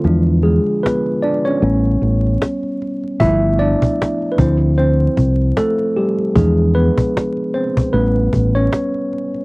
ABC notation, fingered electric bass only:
X:1
M:4/4
L:1/16
Q:"Swing 16ths" 1/4=76
K:Ddor
V:1 name="Fingered electric bass" clef=bass
E,,3 z4 z A,,,2 A,,,2 z4 | G,,,3 z3 D,,4 C,,2 z4 | E,,3 z4 z A,,,2 A,,,2 z4 |]